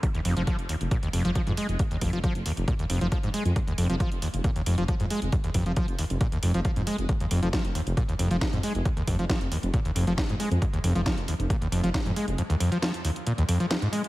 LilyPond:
<<
  \new Staff \with { instrumentName = "Acid bass" } { \clef bass \time 4/4 \key f \minor \tempo 4 = 136 f,16 ees,16 f,16 f16 f16 r16 ees,16 r16 bes,16 ees,16 f,16 f16 f16 aes,16 aes16 r16 | f,16 ees,16 f,16 f16 f16 r16 ees,16 r16 bes,16 ees,16 f,16 f16 f16 aes,16 aes16 r16 | f,16 ees,16 f,16 f16 f16 r16 ees,16 r16 bes,16 ees,16 f,16 f16 f16 aes,16 aes16 r16 | f,16 ees,16 f,16 f16 f16 r16 ees,16 r16 bes,16 ees,16 f,16 f16 f16 aes,16 aes16 r16 |
f,16 ees,16 f,16 f16 f16 r16 ees,16 r16 bes,16 ees,16 f,16 f16 f16 aes,16 aes16 r16 | f,16 ees,16 f,16 f16 f16 r16 ees,16 r16 bes,16 ees,16 f,16 f16 f16 aes,16 aes16 r16 | f,16 ees,16 f,16 f16 f16 r16 ees,16 r16 bes,16 ees,16 f,16 f16 f16 aes,16 aes16 r16 | f,16 ees,16 f,16 f16 f16 r16 ees,16 r16 bes,16 ees,16 f,16 f16 f16 aes,16 aes16 r16 | }
  \new Staff \with { instrumentName = "Detuned saw bass" } { \clef bass \time 4/4 \key f \minor r8 f,,16 f,,16 r16 f,,16 r16 f,,16 r8 f,,16 f,,16 r16 f,16 r16 f,,16 | r8 f,,16 f,,16 r16 f,,16 r16 f,,16 r8 f,,16 f,,16 r16 f,,16 r16 f,16 | r8 f,,16 f,,16 r16 f,,16 r16 f,,16 r8 f,,16 f,,16 r16 f,16 r16 f,,16 | r8 f,,16 f,,16 r16 f,,16 r16 f,,16 r8 f,,16 f,,16 r16 f,16 r16 f,,16 |
r8 f,,16 f,,16 r16 f,,16 r16 f,,16 r8 f,,16 f,,16 r16 f,16 r16 f,,16 | r8 f,,16 f,,16 r16 f,,16 r16 f,,16 r8 f,,16 f,,16 r16 f,,16 r16 f,16 | r8 f,,16 f,,16 r16 f,,16 r16 f,,16 r8 f,,16 f,,16 r16 f,16 r16 f,,16 | r1 | }
  \new DrumStaff \with { instrumentName = "Drums" } \drummode { \time 4/4 <hh bd>16 hh16 hho16 hh16 <hh bd>16 hh16 hho16 hh16 <hh bd>16 hh16 hho16 hh16 <hh bd>16 hh16 hho16 hh16 | <hh bd>16 hh16 <hho bd>16 hh16 <hh bd>16 hh16 hho16 hh16 <hh bd>16 hh16 hho16 hh16 <hh bd>16 hh16 hho16 hh16 | <hh bd>16 hh16 hho16 hh16 <hh bd>16 hh16 hho16 hh16 <hh bd>16 hh16 hho16 hh16 <hh bd>16 hh16 hho16 hh16 | <hh bd>16 hh16 <hho bd>16 hh16 <hh bd>16 hh16 hho16 hh16 <hh bd>16 hh16 hho16 hh16 <hh bd>16 hh16 hho16 hh16 |
<hh bd>16 hh16 hho16 hh16 <hh bd sn>16 hh16 hho16 hh16 <hh bd>16 hh16 hho16 hh16 <hh bd sn>16 hh16 hho16 hh16 | <hh bd>16 hh16 <hho bd>16 hh16 <hh bd sn>16 hh16 hho16 hh16 <hh bd>16 hh16 hho16 hh16 <hh bd sn>16 hh16 hho16 hh16 | <hh bd>16 hh16 hho16 hh16 <hh bd sn>16 hh16 hho16 hh16 <hh bd>16 hh16 hho16 hh16 <hh bd sn>16 hh16 hho16 hh16 | hh16 hh16 hho16 hh16 <hh sn>16 hh16 hho16 hh16 hh16 hh16 hho16 hh16 <hh sn>16 hh16 hho16 hh16 | }
>>